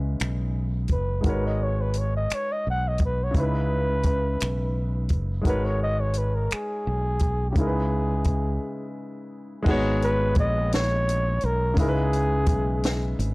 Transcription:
0.00 0.16 C#2 medium
0.00 1.19 C#3 medium
0.00 1.19 G#3 medium
0.00 1.21 D#4 medium
0.00 1.22 E4 soft
0.00 1.23 B4 medium
0.20 0.86 B1 medium
0.20 finger snap medium
0.20 closed hi-hat medium
0.88 1.21 F#1 medium
0.88 kick medium
0.88 closed hi-hat soft
0.92 1.23 B4 medium
1.21 3.29 G#3 medium
1.21 3.30 D#4 soft
1.21 3.31 F#4 medium
1.21 kick medium
1.21 closed hi-hat medium
1.25 2.26 G#1 medium
1.25 3.32 A#4 medium
1.25 3.32 B4 medium
1.25 1.48 B4 medium
1.25 3.33 C#5 medium
1.46 1.65 D#5 medium
1.63 1.83 C#5 medium
1.81 2.00 B4 medium
1.94 closed hi-hat medium
1.99 2.14 C#5 medium
2.17 2.36 D#5 medium
2.30 finger snap medium
2.30 muted fretless electric bass stroke soft
2.30 closed hi-hat medium
2.34 2.54 C#5 medium
2.52 2.67 D#5 medium
2.67 3.32 B1 medium
2.67 2.90 F#5 medium
2.88 3.03 D#5 medium
2.98 kick medium
2.98 closed hi-hat medium
3.05 3.26 B4 medium
3.24 3.43 C#5 medium
3.31 5.39 C#3 medium
3.31 5.40 G#3 medium
3.31 kick loud
3.31 closed hi-hat medium
3.35 4.36 C#2 medium
3.35 5.41 D#4 medium
3.35 5.43 E4 medium
3.39 5.44 B4 medium
3.39 5.13 B4 medium
4.03 kick medium
4.03 closed hi-hat medium
4.40 5.07 B1 medium
4.40 finger snap loud
4.40 closed hi-hat medium
5.09 5.42 F#1 medium
5.09 kick medium
5.09 closed hi-hat medium
5.42 7.50 G#3 medium
5.42 7.51 D#4 medium
5.42 7.52 F#4 medium
5.42 kick medium
5.42 closed hi-hat medium
5.46 6.47 G#1 medium
5.46 7.52 A#4 medium
5.46 5.67 B4 medium
5.46 7.53 B4 medium
5.46 7.54 C#5 medium
5.66 5.82 C#5 medium
5.83 6.02 D#5 loud
6.01 6.19 C#5 medium
6.13 closed hi-hat medium
6.18 6.37 B4 medium
6.35 6.55 A#4 medium
6.51 7.50 G#4 medium
6.51 finger snap loud
6.51 muted fretless electric bass stroke soft
6.51 closed hi-hat medium
6.87 7.53 B1 medium
7.19 kick medium
7.19 closed hi-hat medium
7.51 9.61 C#3 medium
7.51 7.59 G4 medium
7.55 8.57 C#2 medium
7.55 9.61 G#3 medium
7.55 9.63 D#4 medium
7.55 8.97 G#4 medium
7.55 kick loud
7.55 closed hi-hat medium
7.59 9.64 E4 medium
7.59 7.65 A#4 medium
7.67 9.68 B4 medium
8.24 kick medium
8.24 closed hi-hat medium
9.62 11.71 G#3 medium
9.62 11.72 D#4 medium
9.62 11.73 F#4 medium
9.62 kick loud
9.62 crash medium
9.67 10.33 G#1 loud
9.67 11.74 B3 medium
9.67 11.73 G#4 medium
9.67 11.75 C#5 medium
10.02 10.35 B4 loud
10.02 closed hi-hat medium
10.35 11.38 A#1 medium
10.35 kick loud
10.35 closed hi-hat soft
10.40 10.71 D#5 loud
10.72 11.47 C#5 loud
10.72 snare loud
10.72 closed hi-hat medium
11.09 closed hi-hat medium
11.41 11.78 B1 medium
11.41 closed hi-hat soft
11.45 11.78 A#4 medium
11.74 13.34 C#3 medium
11.74 13.34 G#3 medium
11.74 kick loud
11.74 closed hi-hat medium
11.78 12.48 C#2 medium
11.78 13.34 D#4 medium
11.78 13.34 E4 medium
11.78 13.15 G#4 medium
11.78 11.86 A#4 medium
11.88 13.34 B4 medium
12.13 closed hi-hat soft
12.46 13.14 B1 medium
12.46 kick medium
12.46 closed hi-hat medium
12.83 snare loud
12.83 closed hi-hat medium
13.19 13.34 G#1 medium
13.19 closed hi-hat medium

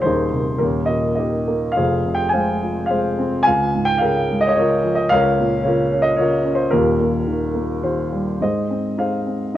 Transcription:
0.02 0.56 D#1 medium
0.02 0.58 D#2 medium
0.02 0.60 C5 medium
0.06 0.57 D#4 medium
0.06 0.57 G#4 medium
0.32 0.59 C3 soft
0.58 1.72 D#1 medium
0.58 1.73 D#2 medium
0.58 1.17 G4 soft
0.58 0.89 A#4 medium
0.62 1.44 C#4 soft
0.86 1.73 A#2 soft
0.86 1.14 D#5 medium
1.15 1.74 D#3 soft
1.15 1.72 G4 medium
1.15 1.77 D#5 medium
1.19 1.73 A#4 medium
1.48 1.76 A#3 medium
1.72 2.18 F5 medium
1.76 3.42 F1 medium
1.76 3.42 F2 medium
1.76 2.58 G#4 medium
1.76 2.32 C5 medium
2.05 3.15 C3 soft
2.15 2.30 G5 medium
2.29 2.90 G#5 medium
2.33 2.89 G#3 medium
2.33 2.89 C5 soft
2.33 2.85 F5 medium
2.63 3.44 F4 soft
2.86 3.45 F5 medium
2.90 3.45 G#3 soft
2.90 3.43 G#4 medium
2.90 3.43 C5 medium
3.19 3.46 C4 medium
3.43 3.97 F5 medium
3.43 3.83 G#5 loud
3.47 5.08 C#2 medium
3.75 4.82 G#2 soft
3.85 4.01 G5 loud
3.98 4.81 G#4 medium
3.98 4.58 A#4 medium
3.98 4.43 F5 medium
4.03 4.56 C#3 medium
4.31 5.09 G#3 soft
4.41 4.46 D#5 medium
4.47 4.50 C#5 medium
4.47 4.57 D#5 medium
4.56 5.10 C#3 medium
4.56 5.09 F4 medium
4.56 5.09 A#4 medium
4.56 4.94 C#5 medium
4.84 5.10 F3 medium
4.95 5.10 D#5 medium
5.09 6.68 C#2 medium
5.09 5.65 A#4 medium
5.09 5.62 C#5 medium
5.09 5.66 F5 loud
5.39 6.42 A#2 medium
5.63 6.18 C#3 medium
5.63 6.18 F4 medium
5.63 6.18 A#4 medium
5.63 6.05 C#5 medium
5.92 6.43 C#4 medium
6.02 6.17 D#5 medium
6.16 6.71 C#3 medium
6.16 6.69 F4 medium
6.16 6.69 A#4 medium
6.16 6.58 C#5 medium
6.44 6.71 C#4 medium
6.55 6.69 C5 medium
6.71 8.38 D#1 medium
6.71 8.37 D#2 medium
6.71 7.79 F4 medium
6.71 7.80 G4 medium
6.71 7.78 A#4 medium
7.00 8.09 A#2 medium
7.27 7.81 D#3 medium
7.54 8.38 A#3 soft
7.83 8.39 D#3 soft
7.83 8.37 F4 soft
7.83 8.37 G4 soft
7.83 8.41 C5 medium
8.12 8.40 G3 soft
8.41 9.57 G#2 medium
8.41 8.98 G#4 soft
8.41 8.98 C5 soft
8.41 9.00 D#5 medium
8.70 9.25 C4 soft
8.98 9.52 D#4 soft
8.98 9.55 G#4 soft
8.98 9.55 C5 soft
8.98 9.56 F5 medium
9.27 9.57 C4 soft
9.54 9.57 D#4 soft

